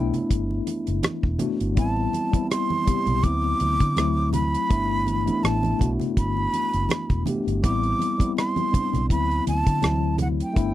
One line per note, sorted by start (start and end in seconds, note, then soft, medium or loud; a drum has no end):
0.00 1.38 A3 medium
0.00 1.39 B3 medium
0.00 1.40 D4 medium
0.00 1.78 E4 medium
0.00 0.15 G5 medium
0.14 closed hi-hat soft
0.14 low conga medium
0.30 0.59 G1 medium
0.30 kick medium
0.30 closed hi-hat medium
0.30 muted conga soft
0.51 muted conga soft
0.67 closed hi-hat medium
0.67 high conga soft
0.87 1.01 F#1 medium
0.87 closed hi-hat soft
1.03 muted fingered electric bass stroke soft
1.03 cross-stick loud
1.03 closed hi-hat medium
1.03 high conga medium
1.23 1.37 E1 medium
1.23 kick medium
1.38 1.72 A3 medium
1.38 1.73 B3 medium
1.38 1.73 D4 medium
1.38 1.74 F#4 medium
1.38 closed hi-hat medium
1.38 high conga medium
1.38 low conga medium
1.60 1.78 G1 medium
1.60 closed hi-hat soft
1.75 2.06 A1 medium
1.75 2.25 G3 medium
1.75 2.26 B3 medium
1.75 2.27 C4 medium
1.75 2.27 E4 medium
1.75 2.47 A5 medium
1.75 kick medium
1.75 closed hi-hat medium
1.97 muted conga soft
2.13 closed hi-hat medium
2.13 high conga medium
2.32 2.80 G3 medium
2.32 2.80 B3 medium
2.32 2.81 C4 medium
2.32 2.82 E4 medium
2.32 kick medium
2.32 closed hi-hat medium
2.32 high conga medium
2.51 3.25 C6 medium
2.51 cross-stick medium
2.51 closed hi-hat medium
2.51 muted conga soft
2.70 muted conga soft
2.70 high conga medium
2.85 3.23 G3 medium
2.85 3.22 B3 medium
2.85 3.23 C4 medium
2.85 3.24 G4 medium
2.85 muted fingered electric bass stroke soft
2.85 kick medium
2.85 closed hi-hat medium
2.85 low conga medium
3.06 3.24 B1 medium
3.06 closed hi-hat soft
3.06 low conga medium
3.22 3.53 D2 medium
3.22 3.88 F#3 medium
3.22 3.89 B3 medium
3.22 3.89 C4 medium
3.22 3.90 E4 medium
3.22 4.33 D6 loud
3.22 kick medium
3.22 closed hi-hat medium
3.22 muted conga soft
3.44 muted conga soft
3.60 3.76 D2 medium
3.60 closed hi-hat medium
3.60 high conga soft
3.80 3.94 D3 medium
3.80 kick medium
3.80 closed hi-hat soft
3.96 4.54 D2 medium
3.96 4.62 F#3 medium
3.96 4.62 A3 medium
3.96 4.63 C4 medium
3.96 4.63 E4 medium
3.96 cross-stick medium
3.96 closed hi-hat medium
3.96 high conga medium
4.17 muted conga soft
4.33 5.45 B5 medium
4.33 closed hi-hat medium
4.33 high conga medium
4.33 low conga medium
4.54 closed hi-hat soft
4.69 5.28 G1 medium
4.69 5.19 A3 medium
4.69 5.19 B3 medium
4.69 5.20 D4 medium
4.69 5.21 E4 medium
4.69 kick loud
4.69 closed hi-hat medium
4.69 muted conga soft
4.91 muted conga soft
5.07 closed hi-hat medium
5.07 high conga medium
5.26 5.73 A3 medium
5.26 5.74 B3 medium
5.26 5.74 D4 medium
5.26 5.75 E4 medium
5.26 closed hi-hat medium
5.26 high conga medium
5.43 5.72 A1 medium
5.43 5.90 A5 medium
5.43 cross-stick medium
5.43 closed hi-hat medium
5.43 muted conga soft
5.63 closed hi-hat soft
5.63 muted conga soft
5.63 high conga medium
5.79 5.96 B1 medium
5.79 7.10 A3 medium
5.79 7.10 B3 medium
5.79 7.11 D4 medium
5.79 7.12 F#4 medium
5.79 kick medium
5.79 closed hi-hat medium
5.79 low conga medium
6.00 closed hi-hat soft
6.00 low conga medium
6.17 6.46 G1 medium
6.17 7.23 B5 medium
6.17 kick medium
6.17 closed hi-hat medium
6.37 muted conga soft
6.54 closed hi-hat medium
6.54 high conga soft
6.73 6.87 F#1 medium
6.73 closed hi-hat soft
6.89 cross-stick loud
6.89 closed hi-hat medium
6.89 muted conga soft
6.89 high conga medium
7.10 7.23 E1 medium
7.10 kick medium
7.10 closed hi-hat soft
7.10 muted conga soft
7.26 7.59 A3 medium
7.26 7.59 B3 medium
7.26 7.60 D4 medium
7.26 7.60 G4 medium
7.26 closed hi-hat medium
7.26 high conga medium
7.26 low conga medium
7.47 7.64 G1 medium
7.47 closed hi-hat soft
7.62 7.92 A1 medium
7.62 8.12 G3 medium
7.62 8.12 B3 medium
7.62 8.13 C4 medium
7.62 8.13 E4 medium
7.62 8.33 D6 medium
7.62 kick loud
7.62 closed hi-hat medium
7.62 muted conga soft
7.83 closed hi-hat soft
7.99 closed hi-hat medium
7.99 high conga medium
8.18 8.66 G3 medium
8.18 8.67 B3 medium
8.18 8.67 C4 medium
8.18 8.68 E4 medium
8.18 kick medium
8.18 closed hi-hat medium
8.18 high conga medium
8.37 9.06 C6 medium
8.37 cross-stick medium
8.37 closed hi-hat medium
8.37 muted conga soft
8.56 closed hi-hat soft
8.56 muted conga soft
8.56 high conga medium
8.71 9.09 G3 medium
8.71 9.08 B3 medium
8.71 9.09 C4 medium
8.71 9.10 D4 medium
8.71 muted fingered electric bass stroke soft
8.71 kick medium
8.71 closed hi-hat medium
8.71 low conga medium
8.93 9.11 B1 medium
8.93 cross-stick soft
8.93 closed hi-hat soft
8.93 low conga medium
9.08 9.39 D2 medium
9.08 9.74 F#3 medium
9.08 9.75 B3 medium
9.08 9.75 C4 medium
9.08 9.76 E4 medium
9.08 9.45 B5 medium
9.08 kick medium
9.08 closed hi-hat medium
9.31 closed hi-hat soft
9.47 9.62 D2 medium
9.47 10.16 A5 medium
9.47 closed hi-hat medium
9.47 high conga soft
9.67 9.80 D3 medium
9.67 kick medium
9.67 closed hi-hat soft
9.81 10.41 D2 medium
9.81 10.47 F#3 medium
9.81 10.48 A3 medium
9.81 10.49 C4 medium
9.81 10.49 E4 medium
9.81 cross-stick medium
9.81 closed hi-hat medium
9.81 muted conga soft
9.81 high conga medium
10.18 10.28 F#5 medium
10.18 closed hi-hat medium
10.18 high conga medium
10.18 low conga medium
10.40 10.74 G5 medium
10.40 closed hi-hat soft
10.53 10.74 G1 medium
10.53 10.74 A3 medium
10.53 10.74 B3 medium
10.53 10.74 D4 medium
10.53 10.74 E4 loud
10.53 kick medium
10.53 closed hi-hat medium